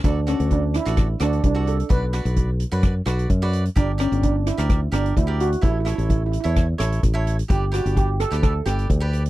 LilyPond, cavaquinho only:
\new Staff \with { instrumentName = "Cavaquinho" } { \time 4/4 \key d \major \tempo 4 = 129 <fis' a' d''>16 r16 <fis' a' d''>8. r8 <fis' a' d''>8 r16 <fis' a' d''>8 r16 <fis' a' d''>8 r16 | <fis' b' d''>16 r16 <fis' b' d''>8. r8 <fis' b' d''>8 r16 <fis' b' d''>8 r16 <fis' b' d''>8 r16 | <g' bes' d''>16 r16 <g' bes' d''>8. r8 <g' bes' d''>8 r16 <g' bes' d''>8 r16 <g' bes' d''>8 r16 | <e' a' cis''>16 r16 <e' a' cis''>8. r8 <e' a' cis''>8 r16 <e' a' cis''>8 r16 <e' a' cis''>8 r16 |
<g' b' d''>16 r16 <g' b' d''>8. r8 <g' b' d''>8 r16 <g' b' d''>8 r16 <g' b' d''>8 r16 | }